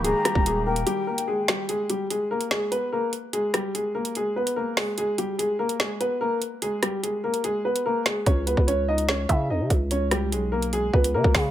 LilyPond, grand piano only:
\new Staff \with { instrumentName = "Grand piano" } { \time 4/4 \key gis \minor \tempo 4 = 146 <gis gis'>8 <g g'>8 <gis gis'>8 <ais ais'>8 <g g'>8 <ais ais'>8 <gis gis'>8 <g g'>8 | <gis gis'>8 <g g'>8 <gis gis'>8 <ais ais'>8 <gis gis'>8 <b b'>8 <ais ais'>8 r8 | <gis gis'>8 <g g'>8 <gis gis'>8 <ais ais'>8 <gis gis'>8 <b b'>8 <ais ais'>8 <gis gis'>8 | <gis gis'>8 <g g'>8 <gis gis'>8 <ais ais'>8 <gis gis'>8 <b b'>8 <ais ais'>8 r8 |
<gis gis'>8 <g g'>8 <gis gis'>8 <ais ais'>8 <gis gis'>8 <b b'>8 <ais ais'>8 <gis gis'>8 | <cis' cis''>8 <b b'>8 <cis' cis''>8 <dis' dis''>8 <cis' cis''>8 <e' e''>8 <dis' dis''>8 r8 | <cis' cis''>8 <g g'>8 <gis gis'>8 <ais ais'>8 <gis gis'>8 <b b'>8 <ais ais'>8 <gis gis'>8 | }